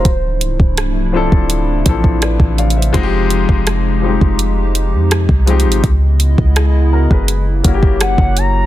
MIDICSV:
0, 0, Header, 1, 6, 480
1, 0, Start_track
1, 0, Tempo, 722892
1, 35, Time_signature, 4, 2, 24, 8
1, 5752, End_track
2, 0, Start_track
2, 0, Title_t, "Soft synth lead"
2, 0, Program_c, 0, 80
2, 0, Note_on_c, 0, 72, 84
2, 276, Note_off_c, 0, 72, 0
2, 5323, Note_on_c, 0, 78, 88
2, 5561, Note_on_c, 0, 82, 93
2, 5571, Note_off_c, 0, 78, 0
2, 5752, Note_off_c, 0, 82, 0
2, 5752, End_track
3, 0, Start_track
3, 0, Title_t, "Grand piano"
3, 0, Program_c, 1, 0
3, 0, Control_c, 1, 64, 127
3, 43, Control_c, 1, 64, 0
3, 160, Control_c, 1, 64, 127
3, 746, Note_on_c, 1, 53, 79
3, 753, Note_on_c, 1, 60, 78
3, 760, Note_on_c, 1, 62, 81
3, 767, Note_on_c, 1, 64, 76
3, 773, Note_on_c, 1, 69, 96
3, 1146, Note_off_c, 1, 53, 0
3, 1150, Note_off_c, 1, 60, 0
3, 1153, Note_off_c, 1, 62, 0
3, 1156, Note_off_c, 1, 64, 0
3, 1160, Note_off_c, 1, 69, 0
3, 1226, Note_on_c, 1, 52, 62
3, 1233, Note_on_c, 1, 60, 72
3, 1239, Note_on_c, 1, 62, 70
3, 1246, Note_on_c, 1, 64, 71
3, 1254, Note_on_c, 1, 69, 86
3, 1269, Note_on_c, 1, 53, 76
3, 1274, Note_off_c, 1, 52, 0
3, 1478, Note_on_c, 1, 74, 67
3, 1483, Note_on_c, 1, 71, 54
3, 1704, Note_off_c, 1, 74, 0
3, 1707, Note_off_c, 1, 71, 0
3, 1718, Note_on_c, 1, 77, 68
3, 1723, Note_on_c, 1, 74, 56
3, 1827, Note_off_c, 1, 60, 0
3, 1831, Note_off_c, 1, 62, 0
3, 1831, Note_off_c, 1, 77, 0
3, 1833, Note_off_c, 1, 74, 0
3, 1834, Note_off_c, 1, 64, 0
3, 1838, Note_off_c, 1, 69, 0
3, 1838, Note_on_c, 1, 76, 59
3, 1842, Note_on_c, 1, 72, 52
3, 1846, Note_off_c, 1, 53, 0
3, 1944, Note_on_c, 1, 53, 109
3, 1950, Note_on_c, 1, 56, 108
3, 1957, Note_on_c, 1, 60, 105
3, 1963, Control_c, 1, 64, 0
3, 1964, Note_on_c, 1, 63, 108
3, 1970, Note_on_c, 1, 66, 95
3, 2006, Note_off_c, 1, 66, 0
3, 2014, Note_on_c, 1, 67, 127
3, 2064, Note_off_c, 1, 76, 0
3, 2066, Note_off_c, 1, 72, 0
3, 2080, Control_c, 1, 64, 127
3, 2543, Note_off_c, 1, 53, 0
3, 2546, Note_off_c, 1, 56, 0
3, 2549, Note_off_c, 1, 60, 0
3, 2553, Note_off_c, 1, 63, 0
3, 2578, Note_off_c, 1, 67, 0
3, 2665, Note_on_c, 1, 53, 76
3, 2672, Note_on_c, 1, 55, 56
3, 2679, Note_on_c, 1, 60, 70
3, 2685, Note_on_c, 1, 63, 74
3, 2693, Note_on_c, 1, 67, 84
3, 2715, Note_on_c, 1, 56, 68
3, 2717, Note_off_c, 1, 55, 0
3, 3462, Note_off_c, 1, 53, 0
3, 3468, Note_off_c, 1, 60, 0
3, 3472, Note_off_c, 1, 63, 0
3, 3475, Note_off_c, 1, 67, 0
3, 3486, Note_off_c, 1, 56, 0
3, 3626, Note_on_c, 1, 53, 82
3, 3633, Note_on_c, 1, 56, 76
3, 3641, Note_on_c, 1, 60, 81
3, 3647, Note_on_c, 1, 63, 77
3, 3654, Note_on_c, 1, 67, 96
3, 3871, Note_off_c, 1, 53, 0
3, 3874, Note_off_c, 1, 56, 0
3, 3878, Note_off_c, 1, 60, 0
3, 3881, Note_off_c, 1, 63, 0
3, 3883, Control_c, 1, 64, 0
3, 3884, Note_off_c, 1, 67, 0
3, 4001, Control_c, 1, 64, 127
3, 4361, Note_on_c, 1, 68, 59
3, 4365, Note_on_c, 1, 64, 53
3, 4586, Note_off_c, 1, 68, 0
3, 4588, Note_off_c, 1, 64, 0
3, 4601, Note_on_c, 1, 70, 67
3, 4604, Note_on_c, 1, 66, 57
3, 4712, Note_off_c, 1, 70, 0
3, 4714, Note_off_c, 1, 66, 0
3, 4723, Note_on_c, 1, 71, 68
3, 4726, Note_on_c, 1, 68, 57
3, 4844, Control_c, 1, 64, 0
3, 4943, Control_c, 1, 64, 127
3, 4947, Note_off_c, 1, 71, 0
3, 4949, Note_off_c, 1, 68, 0
3, 5069, Note_on_c, 1, 54, 79
3, 5076, Note_on_c, 1, 58, 73
3, 5083, Note_on_c, 1, 61, 70
3, 5090, Note_on_c, 1, 64, 73
3, 5097, Note_on_c, 1, 66, 70
3, 5129, Note_off_c, 1, 66, 0
3, 5140, Note_on_c, 1, 67, 87
3, 5666, Note_off_c, 1, 54, 0
3, 5669, Note_off_c, 1, 58, 0
3, 5672, Note_off_c, 1, 61, 0
3, 5676, Note_off_c, 1, 64, 0
3, 5701, Note_off_c, 1, 67, 0
3, 5752, End_track
4, 0, Start_track
4, 0, Title_t, "Analog synth pad"
4, 0, Program_c, 2, 89
4, 33, Note_on_c, 2, 48, 76
4, 34, Note_on_c, 2, 53, 66
4, 34, Note_on_c, 2, 57, 67
4, 34, Note_on_c, 2, 62, 68
4, 34, Note_on_c, 2, 64, 85
4, 1935, Note_off_c, 2, 57, 0
4, 1935, Note_off_c, 2, 62, 0
4, 1935, Note_off_c, 2, 64, 0
4, 1955, Note_on_c, 2, 56, 67
4, 1955, Note_on_c, 2, 63, 74
4, 1956, Note_on_c, 2, 67, 87
4, 3847, Note_off_c, 2, 48, 0
4, 3848, Note_off_c, 2, 53, 0
4, 3856, Note_off_c, 2, 56, 0
4, 3856, Note_off_c, 2, 63, 0
4, 3856, Note_off_c, 2, 67, 0
4, 3875, Note_on_c, 2, 56, 67
4, 3876, Note_on_c, 2, 49, 73
4, 3876, Note_on_c, 2, 59, 67
4, 3876, Note_on_c, 2, 64, 86
4, 3876, Note_on_c, 2, 75, 69
4, 4825, Note_off_c, 2, 49, 0
4, 4825, Note_off_c, 2, 56, 0
4, 4825, Note_off_c, 2, 75, 0
4, 4826, Note_off_c, 2, 59, 0
4, 4834, Note_on_c, 2, 58, 68
4, 4835, Note_on_c, 2, 49, 80
4, 4835, Note_on_c, 2, 54, 82
4, 4836, Note_on_c, 2, 67, 74
4, 5752, Note_off_c, 2, 49, 0
4, 5752, Note_off_c, 2, 54, 0
4, 5752, Note_off_c, 2, 58, 0
4, 5752, Note_off_c, 2, 64, 0
4, 5752, Note_off_c, 2, 67, 0
4, 5752, End_track
5, 0, Start_track
5, 0, Title_t, "808-style bass"
5, 0, Program_c, 3, 38
5, 33, Note_on_c, 3, 26, 99
5, 273, Note_on_c, 3, 24, 99
5, 283, Note_off_c, 3, 26, 0
5, 388, Note_off_c, 3, 24, 0
5, 395, Note_on_c, 3, 24, 102
5, 856, Note_off_c, 3, 24, 0
5, 877, Note_on_c, 3, 26, 98
5, 1222, Note_off_c, 3, 26, 0
5, 1235, Note_on_c, 3, 33, 100
5, 1580, Note_off_c, 3, 33, 0
5, 1591, Note_on_c, 3, 33, 95
5, 1939, Note_off_c, 3, 33, 0
5, 1954, Note_on_c, 3, 29, 107
5, 2300, Note_off_c, 3, 29, 0
5, 2317, Note_on_c, 3, 29, 100
5, 2777, Note_off_c, 3, 29, 0
5, 2798, Note_on_c, 3, 29, 104
5, 3274, Note_on_c, 3, 41, 92
5, 3284, Note_off_c, 3, 29, 0
5, 3502, Note_off_c, 3, 41, 0
5, 3512, Note_on_c, 3, 36, 107
5, 3755, Note_on_c, 3, 32, 90
5, 3765, Note_off_c, 3, 36, 0
5, 3869, Note_off_c, 3, 32, 0
5, 3875, Note_on_c, 3, 37, 108
5, 4221, Note_off_c, 3, 37, 0
5, 4238, Note_on_c, 3, 37, 99
5, 4697, Note_off_c, 3, 37, 0
5, 4719, Note_on_c, 3, 30, 97
5, 5062, Note_off_c, 3, 30, 0
5, 5077, Note_on_c, 3, 30, 98
5, 5421, Note_off_c, 3, 30, 0
5, 5433, Note_on_c, 3, 30, 102
5, 5752, Note_off_c, 3, 30, 0
5, 5752, End_track
6, 0, Start_track
6, 0, Title_t, "Drums"
6, 34, Note_on_c, 9, 36, 106
6, 34, Note_on_c, 9, 42, 64
6, 100, Note_off_c, 9, 36, 0
6, 100, Note_off_c, 9, 42, 0
6, 273, Note_on_c, 9, 42, 65
6, 340, Note_off_c, 9, 42, 0
6, 396, Note_on_c, 9, 36, 82
6, 463, Note_off_c, 9, 36, 0
6, 515, Note_on_c, 9, 42, 58
6, 518, Note_on_c, 9, 37, 105
6, 581, Note_off_c, 9, 42, 0
6, 584, Note_off_c, 9, 37, 0
6, 877, Note_on_c, 9, 36, 89
6, 944, Note_off_c, 9, 36, 0
6, 994, Note_on_c, 9, 42, 70
6, 1060, Note_off_c, 9, 42, 0
6, 1233, Note_on_c, 9, 42, 70
6, 1235, Note_on_c, 9, 36, 88
6, 1300, Note_off_c, 9, 42, 0
6, 1301, Note_off_c, 9, 36, 0
6, 1355, Note_on_c, 9, 36, 95
6, 1421, Note_off_c, 9, 36, 0
6, 1473, Note_on_c, 9, 42, 62
6, 1477, Note_on_c, 9, 37, 107
6, 1540, Note_off_c, 9, 42, 0
6, 1543, Note_off_c, 9, 37, 0
6, 1591, Note_on_c, 9, 36, 91
6, 1658, Note_off_c, 9, 36, 0
6, 1715, Note_on_c, 9, 42, 31
6, 1782, Note_off_c, 9, 42, 0
6, 1796, Note_on_c, 9, 42, 43
6, 1862, Note_off_c, 9, 42, 0
6, 1875, Note_on_c, 9, 42, 54
6, 1941, Note_off_c, 9, 42, 0
6, 1954, Note_on_c, 9, 36, 105
6, 1954, Note_on_c, 9, 42, 63
6, 2020, Note_off_c, 9, 42, 0
6, 2021, Note_off_c, 9, 36, 0
6, 2194, Note_on_c, 9, 42, 59
6, 2261, Note_off_c, 9, 42, 0
6, 2316, Note_on_c, 9, 36, 81
6, 2383, Note_off_c, 9, 36, 0
6, 2435, Note_on_c, 9, 42, 56
6, 2438, Note_on_c, 9, 37, 107
6, 2501, Note_off_c, 9, 42, 0
6, 2504, Note_off_c, 9, 37, 0
6, 2798, Note_on_c, 9, 36, 87
6, 2864, Note_off_c, 9, 36, 0
6, 2915, Note_on_c, 9, 42, 72
6, 2982, Note_off_c, 9, 42, 0
6, 3154, Note_on_c, 9, 42, 74
6, 3221, Note_off_c, 9, 42, 0
6, 3394, Note_on_c, 9, 42, 62
6, 3398, Note_on_c, 9, 37, 111
6, 3461, Note_off_c, 9, 42, 0
6, 3464, Note_off_c, 9, 37, 0
6, 3512, Note_on_c, 9, 36, 92
6, 3578, Note_off_c, 9, 36, 0
6, 3635, Note_on_c, 9, 42, 33
6, 3702, Note_off_c, 9, 42, 0
6, 3716, Note_on_c, 9, 42, 45
6, 3783, Note_off_c, 9, 42, 0
6, 3796, Note_on_c, 9, 42, 56
6, 3863, Note_off_c, 9, 42, 0
6, 3876, Note_on_c, 9, 36, 112
6, 3876, Note_on_c, 9, 42, 62
6, 3942, Note_off_c, 9, 36, 0
6, 3942, Note_off_c, 9, 42, 0
6, 4115, Note_on_c, 9, 42, 60
6, 4182, Note_off_c, 9, 42, 0
6, 4237, Note_on_c, 9, 36, 84
6, 4304, Note_off_c, 9, 36, 0
6, 4356, Note_on_c, 9, 42, 57
6, 4359, Note_on_c, 9, 37, 109
6, 4423, Note_off_c, 9, 42, 0
6, 4426, Note_off_c, 9, 37, 0
6, 4719, Note_on_c, 9, 36, 88
6, 4786, Note_off_c, 9, 36, 0
6, 4835, Note_on_c, 9, 42, 73
6, 4902, Note_off_c, 9, 42, 0
6, 5076, Note_on_c, 9, 42, 72
6, 5077, Note_on_c, 9, 36, 85
6, 5143, Note_off_c, 9, 36, 0
6, 5143, Note_off_c, 9, 42, 0
6, 5197, Note_on_c, 9, 36, 96
6, 5263, Note_off_c, 9, 36, 0
6, 5315, Note_on_c, 9, 42, 62
6, 5319, Note_on_c, 9, 37, 111
6, 5382, Note_off_c, 9, 42, 0
6, 5385, Note_off_c, 9, 37, 0
6, 5433, Note_on_c, 9, 36, 92
6, 5499, Note_off_c, 9, 36, 0
6, 5555, Note_on_c, 9, 42, 53
6, 5621, Note_off_c, 9, 42, 0
6, 5752, End_track
0, 0, End_of_file